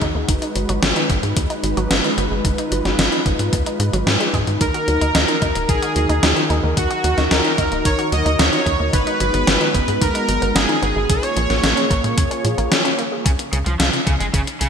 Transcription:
Already playing: D#3 D#4 F#4 G#4
0.01 D#2 D#4, kick, closed hi-hat
0.15 D#2 A#3
0.28 G#1 D#3 G#3 D#4 B4, kick, closed hi-hat
0.42 D#4, closed hi-hat
0.55 G#1 F#3, closed hi-hat
0.69 G#1 F#3, closed hi-hat
0.82 G#1 B3, snare, closed hi-hat
0.96 D#3, closed hi-hat
1.09 G#1 B3, kick, closed hi-hat
1.23 G#2 G#3, closed hi-hat
1.37 D#2 D#3, kick, closed hi-hat
1.50 D#4, closed hi-hat
1.63 G#1 F#3, closed hi-hat
1.77 G#1 F#3, closed hi-hat
1.91 G#1 B3, snare, closed hi-hat
2.04 D#3, closed hi-hat
2.18 G#1 B3, closed hi-hat
2.31 G#1 G#3
2.45 G#1 D#3 F4, kick, closed hi-hat
2.58 D#4, closed hi-hat
2.71 G#1 F#3, closed hi-hat
2.85 G#1 F#3, snare, closed hi-hat
2.98 G#1 B3, snare, closed hi-hat
3.12 D#3, closed hi-hat
3.26 G#1 B3, kick, closed hi-hat
3.39 G#2 G#3, closed hi-hat
3.53 D#2 D#3, kick, closed hi-hat
3.66 D#4, closed hi-hat
3.80 G#2 G#3, closed hi-hat
3.93 G#1 F#3, closed hi-hat
4.07 G#2 D#4, snare, closed hi-hat
4.20 G#3, closed hi-hat
4.34 G#2 G#3, kick, closed hi-hat
4.47 G#2 D#3, closed hi-hat
4.61 D#2 D#3 D#4 F#4 A#4, kick, closed hi-hat
4.74 F#4, closed hi-hat
4.88 D#2 F#3, closed hi-hat
5.01 D#2 D#4, closed hi-hat
5.15 D#2 D#4, snare, closed hi-hat
5.28 D#3, closed hi-hat
5.42 D#2 D#4, kick, closed hi-hat
5.55 D#1 A#3, closed hi-hat
5.69 A#1 D#3 G#4, kick, closed hi-hat
5.82 F#4, closed hi-hat
5.96 D#2 F#3, closed hi-hat
6.09 D#2 D#4, closed hi-hat
6.23 D#2 D#4, snare, closed hi-hat
6.36 D#3, closed hi-hat
6.50 D#2 D#4, closed hi-hat
6.63 D#2 A#3
6.77 D#2 D#3 F#4, kick, closed hi-hat
6.91 F#4, closed hi-hat
7.04 D#2 F#3, closed hi-hat
7.18 D#2 D#4, snare, closed hi-hat
7.31 D#2 D#4 A#4, snare, closed hi-hat
7.45 D#3, closed hi-hat
7.58 D#2 D#4, kick, closed hi-hat
7.72 D#1 A#3, closed hi-hat
7.85 A#1 D#3 C#5, kick, closed hi-hat
7.99 F#4, closed hi-hat
8.12 D#2 F#3 D#5, closed hi-hat
8.26 D#2 D#4, closed hi-hat
8.39 D#2 D#4 C#5, snare, closed hi-hat
8.53 D#3, closed hi-hat
8.66 D#2 D#4, kick, closed hi-hat
8.80 D#2 A#3
8.93 G#1 D#3 G#3 B3 B4, kick, closed hi-hat
9.07 D#4, closed hi-hat
9.20 G#1 F#3, closed hi-hat
9.34 G#1 B3, closed hi-hat
9.47 G#1 B3, snare, closed hi-hat
9.61 D#3, closed hi-hat
9.74 G#1 B3, kick, closed hi-hat
9.88 G#2 G#3, closed hi-hat
10.01 D#2 D#3 A#4, kick, closed hi-hat
10.15 D#4, closed hi-hat
10.28 G#1 F#3, closed hi-hat
10.42 G#1 B3, closed hi-hat
10.55 G#1 B3 G#4, snare, closed hi-hat
10.69 D#3, closed hi-hat
10.82 G#1 B3, closed hi-hat
10.96 G#1 G#3
11.09 A#1 C#3 A#3 F4 G#4 C#5, kick, closed hi-hat
11.23 C#4, closed hi-hat
11.37 A#1 F3, closed hi-hat
11.50 A#1 A#3, snare, closed hi-hat
11.63 A#1 A#3, snare, closed hi-hat
11.77 C#3, closed hi-hat
11.90 A#1 A#3, kick, closed hi-hat
12.04 A#2 G#3, closed hi-hat
12.17 F2 C#3, kick, closed hi-hat
12.31 C#4, closed hi-hat
12.45 A#2 F3, closed hi-hat
12.58 A#1 A#3, closed hi-hat
12.71 A#3, snare, closed hi-hat
12.85 C#3, closed hi-hat
12.99 A#3, closed hi-hat
13.12 G#3
13.25 C#2 C#3 C#4 D#4 F4, kick, closed hi-hat
13.39 C#4, closed hi-hat
13.53 C#2 C#3 D#3, closed hi-hat
13.66 C#2 F3 G#3, closed hi-hat
13.79 C#2 F3 G#3, snare, closed hi-hat
13.93 C#3, closed hi-hat
14.07 C#2 C#3 G#3, kick, closed hi-hat
14.20 G#1 F3 G#3, closed hi-hat
14.34 G#1 C#3, kick, closed hi-hat
14.47 C#4, closed hi-hat
14.61 C#2 C#3 D#3, closed hi-hat

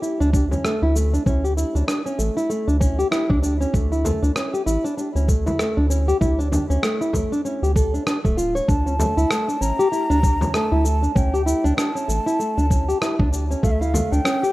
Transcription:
0.02 E4, cabasa
0.20 D2 D4, cabasa
0.33 D4, kick, cabasa
0.51 C#4, frame drum, cabasa
0.64 A3, cross-stick, cabasa
0.82 D2 E4
0.96 A3, cabasa
1.14 D4, cabasa
1.26 D2 C#4, kick, cabasa
1.44 G4, cabasa
1.57 E4, cabasa
1.75 D2 D4, cabasa
1.88 D4, cross-stick, cabasa
2.06 C#4, cabasa
2.19 A1 A3, cabasa
2.37 E4, cabasa
2.50 A3, cabasa
2.68 D2 D4, cabasa
2.81 C#4, kick, cabasa
2.99 G4, cabasa
3.11 E4, cross-stick, cabasa
3.30 D2 D4, kick
3.43 D4, cabasa
3.61 C#4, cabasa
3.74 D2 A3, kick, cabasa
3.92 E4, cabasa
4.05 A3, frame drum, cabasa
4.23 D2 D4, cabasa
4.36 C#4, cross-stick, cabasa
4.54 G4, cabasa
4.66 A1 E4, cabasa
4.84 D4, cabasa
4.97 D4, cabasa
5.15 D2 C#4, cabasa
5.28 A3, kick, cabasa
5.46 E4, frame drum, cabasa
5.59 A3, cross-stick, cabasa
5.77 D2 D4
5.90 C#4, cabasa
6.08 G4, cabasa
6.21 D2 E4, kick, cabasa
6.39 D4, cabasa
6.52 D4, frame drum, cabasa
6.70 D2 C#4, cabasa
6.83 A3, cross-stick, cabasa
7.01 E4, cabasa
7.13 A1 A3, kick, frame drum, cabasa
7.32 D4, cabasa
7.45 C#4, cabasa
7.62 D2 G4, cabasa
7.76 A4, kick, cabasa
7.94 D4, cabasa
8.07 D4, cross-stick, cabasa
8.25 D1 A3, kick, cabasa
8.37 F4, cabasa
8.55 C#5, cabasa
8.68 D2 D4 A5, kick, cabasa
8.86 C#4, cabasa
8.99 A3, frame drum, cabasa
9.17 D2 E4, cabasa
9.30 A3, cross-stick, cabasa
9.48 D4, cabasa
9.61 A1 C#4 A#5, cabasa
9.79 G4, cabasa
9.92 E4, cabasa
10.10 D2 D4, cabasa
10.23 D4, kick, cabasa
10.41 C#4, frame drum, cabasa
10.54 A3 A5, cross-stick, cabasa
10.72 D2 E4
10.85 A3, cabasa
11.03 D4, cabasa
11.15 D2 C#4 G5, kick, cabasa
11.34 G4, cabasa
11.46 E4, cabasa
11.64 D2 D4, cabasa
11.77 D4 A5, cross-stick, cabasa
11.95 C#4, cabasa
12.08 A1 A3, cabasa
12.26 E4, cabasa
12.39 A3, cabasa
12.57 D2 D4, cabasa
12.70 C#4, kick, cabasa
12.89 G4, cabasa
13.02 E4, cross-stick, cabasa
13.19 D2 D4, kick
13.32 D4, cabasa
13.51 C#4, cabasa
13.63 D2 A3 F5, kick, cabasa
13.72 E5
13.80 E4 F5, cabasa
13.94 A3, frame drum, cabasa
14.12 D2 D4 G5, cabasa
14.25 C#4, cross-stick, cabasa
14.43 G4, cabasa

